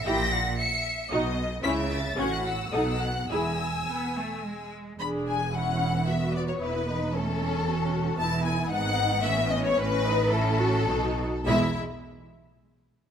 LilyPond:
<<
  \new Staff \with { instrumentName = "Violin section" } { \time 3/4 \key e \major \tempo 4 = 111 ais'''4 cis''''4 r4 | b'''8 a'''8 gis'''16 fis'''16 e'''8 dis'''16 e'''16 fis'''8 | e'''2~ e'''8 r8 | b''8 gis''8 fis''4 e''8 d''16 cis''16 |
b'4 a'2 | a''8 gis''8 fis''4 e''8 dis''16 cis''16 | b'4 a'2 | e'8 r2 r8 | }
  \new Staff \with { instrumentName = "Violin section" } { \time 3/4 \key e \major g''8 fis''8 e''4 dis''4 | e''4 fis''4 fis''4 | gis''2~ gis''8 r8 | b''8 gis''8 fis''4 e''8 d''16 cis''16 |
b'4 a'2 | a''8 gis''8 fis''4 e''8 dis''16 cis''16 | b'4 a'2 | e''8 r2 r8 | }
  \new Staff \with { instrumentName = "Viola section" } { \time 3/4 \key e \major << { g'8 r4. fis'8 r8 | e'8 r8 fis'8 r8 a'8 r8 | gis'8 r2 r8 | gis'4 e'4 fis'4 |
e'8 dis'8 cis'4 fis'4 | e'4 dis'4 cis'4~ | cis'4 cis'4 dis'8 r8 | e'8 r2 r8 | } \\ { e'8 r4. dis'8 r8 | cis'8 r8 cis'8 r8 dis'8 r8 | e'8 r2 r8 | d'4 cis'4 b4~ |
b4 a8 cis'8 cis'4 | b4 b2 | cis'8 dis'8 e'8 fis'8 fis'8 r8 | gis8 r2 r8 | } >> }
  \new Staff \with { instrumentName = "Cello section" } { \clef bass \time 3/4 \key e \major ais,4 r4 b,4 | cis4 a,4 b,4 | e,4 b8 a8 gis4 | e,2. |
e,2. | e,4 gis,4 a,4 | a,2 b,8 r8 | e,8 r2 r8 | }
  \new Staff \with { instrumentName = "Double bass section" } { \clef bass \time 3/4 \key e \major ais,,4 r4 b,,4 | cis,4 a,,4 b,,4 | e,,4 r2 | e,,2. |
e,,2. | e,,4 gis,,4 a,,4 | a,,2 b,,8 r8 | e,,8 r2 r8 | }
>>